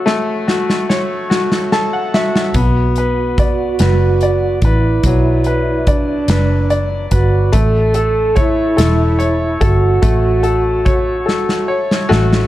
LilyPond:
<<
  \new Staff \with { instrumentName = "Upright piano" } { \time 6/8 \key b \minor \tempo 4. = 48 << { r2 a''16 fis''16 e''8 | r2. | r2. | r2. |
r2 r8 <a fis'>8 | } \\ { <a fis' a'>8 fis'8 cis''8 fis'8 a'8 fis'8 | b8 b'8 d''8 b'8 d''8 b'8 | fis8 b'8 d''8 b'8 d''8 b'8 | a8 a'8 cis''8 a'8 cis''8 a'8 |
a8 a'8 cis''8 a'8 cis''8 a'8 | } >> }
  \new Staff \with { instrumentName = "French horn section" } { \time 6/8 \key b \minor r2. | fis'2~ fis'8 e'8~ | e'4 d'4 r8 fis'8 | a'4 e'4. fis'8~ |
fis'2 r8 cis'8 | }
  \new Staff \with { instrumentName = "Fingered electric bass" } { \clef bass \time 6/8 \key b \minor r2. | b,,4. fis,,4 a,,8 | b,,4. fis,,4 g,,8 | a,,4. e,,4 g,,8 |
a,,4. fis,,4 a,,8 | }
  \new DrumStaff \with { instrumentName = "Drums" } \drummode { \time 6/8 sn8 sn16 sn16 sn8 sn16 sn16 sn8 sn16 sn16 | <hh bd>8 hh8 <hh bd>8 <hh sn>8 hh8 <hh bd>8 | <hh bd>8 hh8 <hh bd>8 <hh sn>8 hh8 <hh bd>8 | <hh bd>8 hh8 <hh bd>8 <hh sn>8 hh8 <hh bd>8 |
<hh bd>8 hh8 <hh bd>8 sn16 sn8 sn16 sn16 sn16 | }
>>